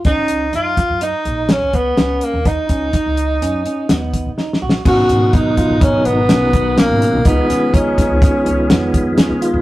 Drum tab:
CC |------------------------------|------------------------------|x-----------------------------|------------------------------|
HH |x--x--x--x--x--x--x--x--x--x--|x--x--x--x--x--x--x--x--------|---x--x--x--x--x--x--x--x--x--|x--x--x--x--x--x--x--x--x--x--|
SD |---------o--------o-----o-----|------------------o-----o-o-o-|------------------o-----o-----|---------o--o-----o-----o-----|
BD |o--------o-----------o--------|o--o--o--------------o--------|o-----o--o--o--------o--------|o-----o--o--o--------o--------|